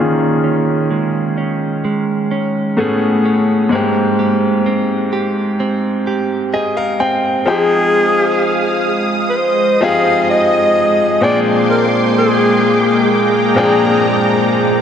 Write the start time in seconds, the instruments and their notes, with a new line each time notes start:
Already playing: grand piano D#3 A#3 C#4, clean electric guitar D#3
0.00 grand piano F4 G#4
0.44 clean electric guitar C#4
0.90 clean electric guitar G#3
1.38 clean electric guitar C#4
1.84 clean electric guitar G#3
2.31 clean electric guitar C#4
2.77 grand piano A2 A3 B3 C#4 G#4, clean electric guitar A3
3.25 clean electric guitar C#4
3.69 grand piano G#2 G#3 A#3, clean electric guitar G#3
3.74 grand piano C4 G4
4.19 clean electric guitar G4
4.66 clean electric guitar C4
5.13 clean electric guitar G4
5.60 clean electric guitar C4
6.07 clean electric guitar G4
6.54 clean electric guitar G#4, grand piano D#5
6.77 clean electric guitar A#4, grand piano F5
7.00 clean electric guitar C4, grand piano G5
7.46 grand piano F3 C4 D#4 G#4 G5, analog synth pad G#3 F5 D#6, alto saxophone G#4
9.30 alto saxophone B4
9.35 alto saxophone C5, analog synth pad D#5
9.81 grand piano F3 C4 D#4 G4 G#4, alto saxophone F5
10.30 alto saxophone D#5
11.21 grand piano A#2 F3 C4 D4 G#4 G5, analog synth pad A#3 G5 C6 D6, alto saxophone D5
11.71 alto saxophone A#4
12.18 alto saxophone G#4
13.10 alto saxophone G#4, analog synth pad A#5
13.55 grand piano A#2 F3 C4 D4 G#4 G5